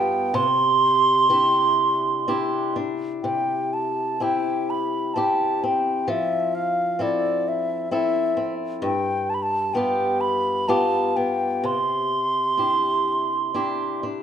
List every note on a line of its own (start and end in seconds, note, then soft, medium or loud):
0.00 0.34 G2 medium
0.00 0.43 B3 medium
0.00 0.43 F4 medium
0.00 1.30 G4 medium
0.00 0.36 G5 medium
0.34 3.23 C3 medium
0.34 2.76 C6 loud
1.30 2.27 D4 medium
1.30 2.28 E4 soft
1.30 2.28 G4 medium
2.28 2.75 D4 medium
2.28 4.21 E4 soft
2.28 4.21 G4 soft
2.76 3.34 D4 soft
3.23 6.08 C3 medium
3.23 3.75 G5 medium
3.73 4.24 A5 medium
4.20 5.15 C4 soft
4.20 5.16 E4 soft
4.20 5.16 G4 soft
4.20 4.71 G5 medium
4.70 5.16 B5 medium
5.14 5.63 C4 soft
5.14 7.00 E4 soft
5.14 6.18 G4 medium
5.14 5.65 A5 medium
5.64 6.99 C4 soft
5.64 6.11 G5 medium
6.08 8.85 F3 medium
6.08 6.56 E5 medium
6.55 7.04 F5 medium
6.99 7.90 C4 soft
6.99 7.91 E4 soft
6.99 7.91 A4 soft
6.99 7.50 D5 medium
7.48 7.93 E5 medium
7.91 8.36 C4 soft
7.91 8.92 E4 soft
7.91 8.92 A4 medium
7.91 8.54 E5 medium
8.37 8.92 C4 soft
8.82 11.62 G2 medium
8.82 9.31 G5 medium
9.30 9.36 A5 medium
9.34 9.44 B5 medium
9.43 9.75 A5 medium
9.74 10.67 B3 soft
9.74 10.68 F4 soft
9.74 10.69 G4 medium
9.74 10.22 G5 medium
10.21 10.70 B5 medium
10.68 11.16 B3 medium
10.68 11.73 F4 medium
10.68 12.59 G4 medium
10.68 11.18 A5 medium
11.16 11.73 B3 soft
11.16 11.67 G5 medium
11.64 14.23 C3 medium
11.64 14.05 C6 medium
12.57 13.53 D4 soft
12.57 13.55 E4 soft
12.57 13.55 G4 soft
13.54 14.02 D4 soft
13.54 14.23 E4 soft
13.54 14.23 G4 soft
14.03 14.23 D4 soft